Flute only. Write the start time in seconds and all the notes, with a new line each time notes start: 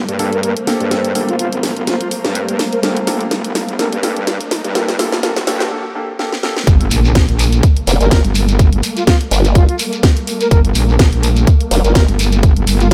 0.33 A#4
0.43 A#4
1.28 F4
1.39 F4
1.87 F4
2.01 F4
2.73 A#4
2.83 A#4
3.79 A#4
4.75 A#4
5.23 A#4
8.00 A#4
8.11 A#4
8.97 F4
9.07 F4
9.55 F4
9.69 F4
10.41 A#4
10.51 A#4
11.84 A#4
11.95 A#4
12.80 F4